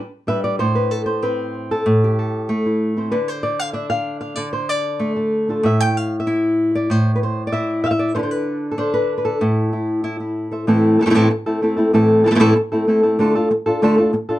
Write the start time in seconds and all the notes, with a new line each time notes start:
0.27 G3 D4 G4 B4 E5
0.44 D5
0.59 A2 C5
0.75 B4
0.91 A4
1.06 C5
1.22 C4 B4
1.71 A4
1.86 A2
2.04 G4
2.19 A4
2.49 A3
2.66 E4
2.97 C4 E4 C5
3.11 D3 B4
3.28 C5
3.43 D5
3.59 F5
3.73 D4 E5
3.90 F5
4.21 F5
4.36 D3 D5
4.53 C5
4.69 D5
4.99 A3
5.16 A4
5.49 D4 F4 A4
5.63 A2 E5
5.80 G5
5.97 F5
6.20 E5
6.27 E4
6.75 D5
6.90 A2 C5
7.15 B4
7.23 C5
7.47 D5
7.52 E4 E5
7.84 E5 F5
7.91 E5
7.99 D5
8.15 D3 D4 A4 C5
8.19 B4
8.23 C5
8.31 B4
8.71 A4
8.78 D4 C5
8.94 B4
9.18 B4
9.25 A4
9.41 A2 E4
9.73 E4
10.04 E4
10.20 E4
10.51 A4 C5 E5
10.67 A2 E3 A3 C4 E4 A4
10.99 E3 A3 C4 E4 A4
11.06 E3 A3 C4 E4 A4
11.10 E3 A3 C4 E4 A4
11.14 A2 E3 A3 C4 E4 A4
11.30 muted nylon-string guitar stroke
11.46 A3 C4 E4 A4
11.62 A3 C4 E4 A4
11.77 A3 C4 E4 A4
11.93 A2 E3 A3 C4 E4 A4
12.24 E3 A3 C4 E4 A4
12.31 E3 A3 C4 E4 A4
12.35 E3 A3 C4 E4 A4
12.39 A2 E3 A3 C4 E4 A4
12.56 muted nylon-string guitar stroke
12.72 A3 C4 E4 A4
12.87 A3 C4 E4 A4
13.03 A3 C4 E4 A4
13.19 D3 A3 D4 F4 A4
13.35 D4 F4 A4
13.51 muted nylon-string guitar stroke
13.66 D4 F4 A4
13.82 D3 A3 D4 F4 A4
13.98 D4 F4 A4
14.13 muted nylon-string guitar stroke
14.29 D4 F4 A4